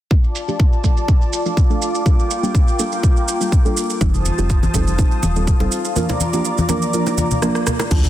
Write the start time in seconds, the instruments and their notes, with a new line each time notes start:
0.11 synth stab F3 A3 D4 F4 A4, analog synth pad F4 D5 A5 D6, kick, shaker
0.24 shaker
0.35 shaker
0.48 synth stab F3 A3 D4 F4 G4, shaker
0.60 kick, shaker
0.73 shaker
0.84 synth stab F3 A3 D4 F4 A4, kick, shaker
0.97 shaker
1.08 synth stab F3 A3 D4 F4 A4, kick, shaker
1.21 shaker
1.33 shaker
1.46 synth stab F3 A3 D4 F4 A4, shaker
1.57 kick, shaker
1.70 synth stab F3 A3 D4 F4 A4, shaker
1.82 shaker
1.95 shaker
2.06 synth stab G3 A#3 D4 F4 A4, analog synth pad A#3 G5, kick, shaker
2.19 shaker
2.31 shaker
2.43 synth stab G3 A#3 D4 F4 G4, shaker
2.55 kick, shaker
2.68 shaker
2.79 synth stab G3 A#3 D4 F4 A4, shaker
2.92 shaker
3.03 synth stab G3 A#3 D4 F4 A4, kick, shaker
3.17 shaker
3.28 shaker
3.41 synth stab G3 A#3 D4 F4 A4, shaker
3.52 kick, shaker
3.65 synth stab G3 A#3 D4 F4 A4, shaker
3.77 shaker
3.90 shaker
4.01 analog synth bass F1, synth stab G3 C4 D#4 F4 A4, analog synth pad F4 C5 A5 D#6, kick, high conga, shaker
4.14 low conga, shaker
4.25 high conga, shaker
4.38 analog synth bass F1, synth stab G3 C4 D#4 F4 G4, shaker
4.50 kick, shaker
4.63 high conga, shaker
4.74 analog synth bass F1, synth stab G3 C4 D#4 F4 A4, kick, low bongo, high conga, shaker
4.87 shaker
4.99 synth stab G3 C4 D#4 F4 A4, kick, shaker
5.12 shaker
5.23 analog synth bass D#1, low bongo, high conga, shaker
5.36 synth stab G3 C4 D#4 F4 A4, shaker
5.47 kick, shaker
5.60 analog synth bass F1, synth stab G3 C4 D#4 F4 A4, high bongo, shaker
5.72 shaker
5.85 shaker
5.96 synth stab F3 A#3 D4 F4 A#4, analog synth pad D5 A#5 D6, high conga, shaker
6.09 high bongo, low conga, shaker
6.20 high conga, shaker
6.33 synth stab F3 A#3 D4 F4 G4, low bongo, shaker
6.45 shaker
6.58 high conga, shaker
6.69 synth stab F3 A#3 D4 F4 A#4, low bongo, high conga, shaker
6.82 shaker
6.94 synth stab F3 A#3 D4 F4 A#4, shaker
7.06 high bongo, shaker
7.17 high conga, low conga, shaker
7.31 low conga, shaker
7.42 synth stab F3 A#3 D4 F4 D5, cross-stick, shaker
7.55 cross-stick, shaker
7.67 cross-stick, low conga, shaker
7.80 cross-stick, high bongo, shaker
7.91 analog synth bass D2, synth stab F3 A3 D4 F4 A4, analog synth pad F4 D5 A5 D6, kick, crash, high conga, shaker
8.04 closed hi-hat, low conga, shaker